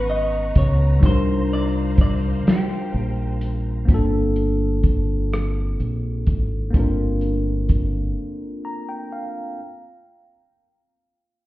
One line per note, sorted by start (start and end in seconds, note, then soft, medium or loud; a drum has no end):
0.00 0.51 G#1 medium
0.00 1.00 B3 medium
0.00 0.98 C#4 medium
0.00 0.99 D#4 medium
0.00 1.00 F#4 medium
0.00 1.00 B4 medium
0.00 1.01 B4 medium
0.00 1.00 F#5 medium
0.00 3.84 A#5 medium
0.00 0.99 C#6 medium
0.10 0.57 D#5 loud
0.55 0.99 C#2 medium
0.55 1.05 C#5 medium
0.55 kick medium
0.55 closed hi-hat medium
0.99 2.42 C2 loud
0.99 3.83 G3 medium
0.99 3.84 D4 medium
0.99 3.86 C5 medium
0.99 3.86 F5 medium
0.99 kick loud
0.99 closed hi-hat medium
1.04 3.85 D#4 medium
1.04 3.86 F4 medium
1.04 1.49 C5 loud
1.08 3.87 A#4 medium
1.53 2.00 D5 loud
1.98 2.49 D5 medium
1.98 kick medium
1.98 closed hi-hat medium
2.47 3.50 G4 medium
2.47 muted fingered electric bass stroke soft
2.47 snare medium
2.47 closed hi-hat medium
2.94 3.85 A#1 medium
3.41 closed hi-hat medium
3.85 5.75 G1 medium
3.85 6.69 A#3 medium
3.85 6.70 C4 medium
3.85 kick loud
3.85 closed hi-hat medium
3.90 6.71 D4 medium
3.90 6.72 F4 medium
3.94 6.73 A4 medium
4.36 closed hi-hat soft
4.83 kick medium
4.83 closed hi-hat medium
5.33 cross-stick medium
5.33 closed hi-hat medium
5.80 6.23 A#1 medium
5.80 closed hi-hat soft
6.27 6.71 G#1 medium
6.27 kick medium
6.27 closed hi-hat medium
6.70 9.54 A#3 medium
6.70 9.55 C4 medium
6.70 kick medium
6.70 closed hi-hat medium
6.75 8.13 G1 medium
6.75 9.56 D4 medium
6.75 9.57 F4 medium
6.79 9.59 A#4 medium
7.21 closed hi-hat soft
7.69 kick medium
7.69 closed hi-hat medium
8.65 8.87 A#5 medium
8.89 9.11 G5 medium
9.12 9.57 F5 medium